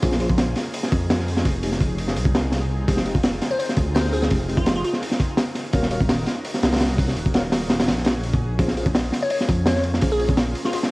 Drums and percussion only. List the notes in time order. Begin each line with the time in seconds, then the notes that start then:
0.03 kick, open hi-hat
0.12 snare
0.20 open hi-hat
0.30 kick
0.38 snare, open hi-hat
0.56 snare, open hi-hat
0.74 open hi-hat
0.83 snare
0.92 kick, open hi-hat
1.10 snare, open hi-hat
1.19 snare
1.28 open hi-hat
1.37 snare
1.45 kick, open hi-hat
1.63 open hi-hat
1.72 snare
1.81 kick, open hi-hat
1.98 open hi-hat
2.08 snare
2.16 open hi-hat
2.25 kick
2.35 snare, open hi-hat
2.52 snare, open hi-hat
2.88 kick, open hi-hat
2.97 snare
3.06 open hi-hat
3.15 kick
3.23 snare, open hi-hat
3.42 snare, open hi-hat
3.60 open hi-hat
3.69 snare
3.77 kick, open hi-hat
3.96 snare, open hi-hat
4.05 snare
4.14 open hi-hat
4.22 snare
4.30 kick, open hi-hat
4.49 open hi-hat
4.57 kick
4.66 snare, open hi-hat
4.84 open hi-hat
4.93 snare
5.03 open hi-hat
5.11 snare
5.20 kick, open hi-hat
5.37 snare, open hi-hat
5.55 snare, open hi-hat
5.73 kick, open hi-hat
5.83 snare
5.91 open hi-hat
6.01 kick
6.09 snare, open hi-hat
6.27 snare, open hi-hat
6.45 open hi-hat
6.54 snare
6.63 snare, open hi-hat
6.72 snare, open hi-hat
6.76 snare, open hi-hat
6.81 snare, open hi-hat
6.89 snare
6.98 kick, open hi-hat
7.08 snare
7.16 open hi-hat
7.26 kick
7.34 snare, open hi-hat
7.52 snare, open hi-hat
7.70 snare, open hi-hat
7.79 snare, open hi-hat
7.88 snare, open hi-hat
7.97 snare
8.04 snare, open hi-hat
8.23 open hi-hat
8.33 kick
8.59 kick, open hi-hat
8.68 snare
8.77 open hi-hat
8.86 kick
8.95 snare, open hi-hat
9.12 snare, open hi-hat
9.30 open hi-hat
9.41 snare
9.49 kick, open hi-hat
9.66 snare, open hi-hat
9.76 snare
9.84 open hi-hat
9.94 snare
10.01 kick, open hi-hat
10.20 open hi-hat
10.29 kick
10.37 snare, open hi-hat
10.55 open hi-hat
10.65 snare
10.73 open hi-hat
10.83 snare